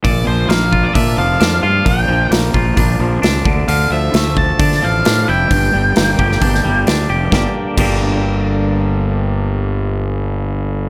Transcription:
<<
  \new Staff \with { instrumentName = "Lead electric guitar" } { \time 4/4 \key g \minor \tempo 4 = 132 d''8 c''8 f''8. d''16 e''8 f''4 f''8 | g''4 r2. | f''8 e''4 a''4 f''4 g''8~ | g''2. r4 |
r1 | r1 | }
  \new Staff \with { instrumentName = "Clean electric guitar" } { \time 4/4 \key g \minor bes,8 f8 bes8 f'8 d'8 f8 d'8 f'8 | bes,8 f8 bes8 f'8 d'8 f8 d'8 d8 | d8 f8 a4 d'8 f8 d'8 e'8 | g,8 g8 bes8 g'8 d'8 g8 d'8 g'8 |
<g, d g bes d' g'>8 r8 <g, d g bes d' g'>2.~ | <g, d g bes d' g'>1 | }
  \new Staff \with { instrumentName = "Fingered electric bass" } { \clef bass \time 4/4 \key g \minor bes,,8 bes,,8 bes,,4 bes,8 f,,8 f,8 g,8 | bes,,8 bes,,8 bes,,8 bes,,8 bes,,8 bes,,8 cis,8 d,8 | d,8 d,8 d,4 d8 a,,8 a,8 f,,8 | g,,8 g,,8 g,,8 g,,8 g,,8 g,,8 d,8 f,,8 |
g,,8 r8 g,,2.~ | g,,1 | }
  \new DrumStaff \with { instrumentName = "Drums" } \drummode { \time 4/4 <hho bd>4 <hho sn>8 bd8 <hho bd>4 <hho sn>4 | <hho bd>4 <hho sn>8 bd8 <hho bd>4 <hho sn>8 bd8 | hho4 <hho sn>8 bd8 <hho bd>16 sn8. <hho sn>4 | <hho bd>4 <hho sn>8 bd16 sn16 <hho bd>16 sn8. <hho sn>4 |
<bd sn>4 <cymc bd>4 r4 r4 | r4 r4 r4 r4 | }
>>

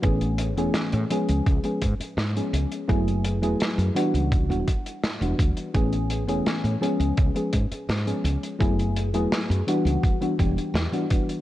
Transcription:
<<
  \new Staff \with { instrumentName = "FM electric piano" } { \time 4/4 \key a \major \tempo 4 = 84 <e a b cis' gis'>8. <e a b cis' gis'>8. <eis gis b cis' gis'>8. <eis gis b cis' gis'>16 r8. <eis gis b cis' gis'>8. | <fis a b e' gis'>8. <fis a b e' gis'>8. <e g b d' fis'>8. <e g b d' fis'>16 r8. <e g b d' fis'>8. | <e a b cis' gis'>8. <e a b cis' gis'>8. <eis gis b cis' gis'>8. <eis gis b cis' gis'>16 r8. <eis gis b cis' gis'>8. | <fis a b e' gis'>8. <fis a b e' gis'>8. <e g b d' fis'>8. <e g b d' fis'>16 <e g b d' g'>8. <e g b d' fis'>16 <e g b d' fis'>8 | }
  \new Staff \with { instrumentName = "Fretless electric bass" } { \clef bass \time 4/4 \key a \major a,,8. e,,16 r16 a,16 r16 cis,16 cis,16 r16 gis,16 r16 gis,16 r16 cis,16 r16 | fis,,8. e,,16 r16 fis,16 r16 cis,8 e,,16 r8. e,,16 d,16 r16 | a,,8. e,,16 r16 a,16 r16 cis,16 cis,16 r16 gis,16 r16 gis,16 r16 cis,16 r16 | fis,,8. e,,16 r16 fis,16 r16 cis,16 r8 e,,16 r16 e,16 r8. | }
  \new DrumStaff \with { instrumentName = "Drums" } \drummode { \time 4/4 <hh bd>16 hh16 hh16 hh16 <hh sn>16 hh16 hh16 hh16 <hh bd>16 hh16 <hh bd>16 hh16 <hh sn>16 hh16 hh16 hh16 | <hh bd>16 hh16 hh16 hh16 <hh sn>16 hh16 hh16 hh16 <hh bd>16 hh16 <hh bd>16 hh16 <hh sn>16 hh16 <hh bd>16 hh16 | <hh bd>16 hh16 hh16 hh16 <hh sn>16 hh16 hh16 hh16 <hh bd>16 hh16 <hh bd>16 hh16 <hh sn>16 hh16 hh16 hh16 | <hh bd>16 hh16 hh16 hh16 <hh sn>16 hh16 hh16 hh16 <hh bd>16 hh16 <hh bd>16 hh16 <hh sn>16 hh16 <hh bd>16 hh16 | }
>>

